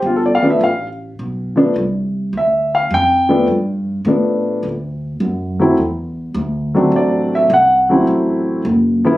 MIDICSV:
0, 0, Header, 1, 4, 480
1, 0, Start_track
1, 0, Tempo, 574713
1, 26, Time_signature, 4, 2, 24, 8
1, 7662, End_track
2, 0, Start_track
2, 0, Title_t, "Upright piano"
2, 0, Program_c, 0, 0
2, 50, Note_on_c, 0, 65, 70
2, 137, Note_on_c, 0, 69, 70
2, 146, Note_off_c, 0, 65, 0
2, 184, Note_off_c, 0, 69, 0
2, 214, Note_on_c, 0, 74, 70
2, 291, Note_on_c, 0, 77, 91
2, 353, Note_on_c, 0, 53, 69
2, 355, Note_on_c, 0, 57, 61
2, 358, Note_on_c, 0, 59, 56
2, 367, Note_off_c, 0, 74, 0
2, 369, Note_on_c, 0, 62, 70
2, 395, Note_off_c, 0, 77, 0
2, 420, Note_on_c, 0, 76, 80
2, 489, Note_off_c, 0, 53, 0
2, 490, Note_off_c, 0, 57, 0
2, 492, Note_off_c, 0, 59, 0
2, 497, Note_off_c, 0, 62, 0
2, 498, Note_off_c, 0, 76, 0
2, 531, Note_on_c, 0, 77, 85
2, 722, Note_off_c, 0, 77, 0
2, 1300, Note_on_c, 0, 53, 61
2, 1309, Note_on_c, 0, 57, 54
2, 1309, Note_on_c, 0, 59, 56
2, 1314, Note_on_c, 0, 62, 76
2, 1443, Note_off_c, 0, 53, 0
2, 1447, Note_off_c, 0, 57, 0
2, 1448, Note_off_c, 0, 59, 0
2, 1450, Note_off_c, 0, 62, 0
2, 1983, Note_on_c, 0, 76, 77
2, 2287, Note_off_c, 0, 76, 0
2, 2294, Note_on_c, 0, 77, 82
2, 2431, Note_off_c, 0, 77, 0
2, 2456, Note_on_c, 0, 79, 103
2, 2745, Note_on_c, 0, 53, 67
2, 2748, Note_on_c, 0, 57, 62
2, 2753, Note_on_c, 0, 59, 61
2, 2761, Note_on_c, 0, 62, 68
2, 2886, Note_off_c, 0, 53, 0
2, 2888, Note_off_c, 0, 57, 0
2, 2890, Note_off_c, 0, 59, 0
2, 2890, Note_off_c, 0, 79, 0
2, 2894, Note_off_c, 0, 62, 0
2, 3391, Note_on_c, 0, 53, 51
2, 3395, Note_on_c, 0, 57, 52
2, 3403, Note_on_c, 0, 59, 52
2, 3409, Note_on_c, 0, 62, 63
2, 3869, Note_off_c, 0, 53, 0
2, 3871, Note_off_c, 0, 57, 0
2, 3875, Note_off_c, 0, 59, 0
2, 3879, Note_off_c, 0, 62, 0
2, 4673, Note_on_c, 0, 54, 62
2, 4674, Note_on_c, 0, 57, 53
2, 4685, Note_on_c, 0, 60, 56
2, 4690, Note_on_c, 0, 64, 68
2, 4810, Note_off_c, 0, 54, 0
2, 4811, Note_off_c, 0, 57, 0
2, 4816, Note_off_c, 0, 60, 0
2, 4818, Note_off_c, 0, 64, 0
2, 5634, Note_on_c, 0, 54, 66
2, 5636, Note_on_c, 0, 57, 60
2, 5644, Note_on_c, 0, 60, 58
2, 5651, Note_on_c, 0, 62, 73
2, 5814, Note_on_c, 0, 74, 76
2, 6122, Note_off_c, 0, 74, 0
2, 6140, Note_on_c, 0, 76, 82
2, 6235, Note_off_c, 0, 54, 0
2, 6236, Note_off_c, 0, 57, 0
2, 6240, Note_off_c, 0, 60, 0
2, 6243, Note_off_c, 0, 62, 0
2, 6274, Note_off_c, 0, 76, 0
2, 6294, Note_on_c, 0, 78, 78
2, 6592, Note_on_c, 0, 54, 64
2, 6597, Note_on_c, 0, 57, 58
2, 6606, Note_on_c, 0, 60, 68
2, 6610, Note_on_c, 0, 64, 69
2, 6727, Note_off_c, 0, 78, 0
2, 7194, Note_off_c, 0, 54, 0
2, 7196, Note_off_c, 0, 57, 0
2, 7200, Note_off_c, 0, 60, 0
2, 7202, Note_off_c, 0, 64, 0
2, 7555, Note_on_c, 0, 53, 80
2, 7560, Note_on_c, 0, 57, 72
2, 7563, Note_on_c, 0, 59, 72
2, 7572, Note_on_c, 0, 64, 88
2, 7662, Note_off_c, 0, 53, 0
2, 7662, Note_off_c, 0, 57, 0
2, 7662, Note_off_c, 0, 59, 0
2, 7662, Note_off_c, 0, 64, 0
2, 7662, End_track
3, 0, Start_track
3, 0, Title_t, "Upright bass"
3, 0, Program_c, 1, 32
3, 20, Note_on_c, 1, 31, 80
3, 331, Note_off_c, 1, 31, 0
3, 506, Note_on_c, 1, 33, 81
3, 972, Note_off_c, 1, 33, 0
3, 994, Note_on_c, 1, 35, 74
3, 1457, Note_off_c, 1, 35, 0
3, 1467, Note_on_c, 1, 36, 85
3, 1933, Note_off_c, 1, 36, 0
3, 1944, Note_on_c, 1, 38, 77
3, 2412, Note_off_c, 1, 38, 0
3, 2426, Note_on_c, 1, 41, 92
3, 2893, Note_off_c, 1, 41, 0
3, 2903, Note_on_c, 1, 43, 72
3, 3371, Note_off_c, 1, 43, 0
3, 3380, Note_on_c, 1, 45, 85
3, 3850, Note_off_c, 1, 45, 0
3, 3865, Note_on_c, 1, 38, 75
3, 4332, Note_off_c, 1, 38, 0
3, 4345, Note_on_c, 1, 42, 85
3, 4812, Note_off_c, 1, 42, 0
3, 4824, Note_on_c, 1, 40, 76
3, 5291, Note_off_c, 1, 40, 0
3, 5298, Note_on_c, 1, 38, 94
3, 5768, Note_off_c, 1, 38, 0
3, 5777, Note_on_c, 1, 33, 77
3, 6247, Note_off_c, 1, 33, 0
3, 6262, Note_on_c, 1, 36, 87
3, 6729, Note_off_c, 1, 36, 0
3, 6742, Note_on_c, 1, 33, 78
3, 7209, Note_off_c, 1, 33, 0
3, 7223, Note_on_c, 1, 30, 93
3, 7662, Note_off_c, 1, 30, 0
3, 7662, End_track
4, 0, Start_track
4, 0, Title_t, "Muted upright bass strokes"
4, 355, Note_on_c, 9, 29, 38
4, 438, Note_off_c, 9, 29, 0
4, 7662, End_track
0, 0, End_of_file